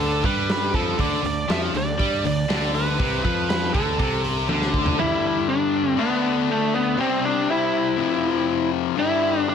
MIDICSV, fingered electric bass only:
0, 0, Header, 1, 2, 480
1, 0, Start_track
1, 0, Tempo, 499584
1, 949, Time_signature, 4, 2, 24, 8
1, 9174, End_track
2, 0, Start_track
2, 0, Title_t, "Fingered electric bass"
2, 0, Program_c, 0, 33
2, 0, Note_on_c, 0, 38, 94
2, 195, Note_off_c, 0, 38, 0
2, 227, Note_on_c, 0, 43, 75
2, 675, Note_off_c, 0, 43, 0
2, 712, Note_on_c, 0, 41, 97
2, 934, Note_off_c, 0, 41, 0
2, 950, Note_on_c, 0, 38, 82
2, 1174, Note_off_c, 0, 38, 0
2, 1189, Note_on_c, 0, 38, 81
2, 1413, Note_off_c, 0, 38, 0
2, 1434, Note_on_c, 0, 41, 86
2, 1656, Note_off_c, 0, 41, 0
2, 1668, Note_on_c, 0, 38, 81
2, 1893, Note_off_c, 0, 38, 0
2, 1912, Note_on_c, 0, 43, 86
2, 2136, Note_off_c, 0, 43, 0
2, 2151, Note_on_c, 0, 38, 76
2, 2375, Note_off_c, 0, 38, 0
2, 2391, Note_on_c, 0, 38, 90
2, 2839, Note_off_c, 0, 38, 0
2, 2877, Note_on_c, 0, 36, 86
2, 3099, Note_off_c, 0, 36, 0
2, 3117, Note_on_c, 0, 41, 100
2, 3563, Note_off_c, 0, 41, 0
2, 3600, Note_on_c, 0, 38, 95
2, 3821, Note_off_c, 0, 38, 0
2, 3840, Note_on_c, 0, 36, 93
2, 4284, Note_off_c, 0, 36, 0
2, 4309, Note_on_c, 0, 38, 95
2, 4758, Note_off_c, 0, 38, 0
2, 9174, End_track
0, 0, End_of_file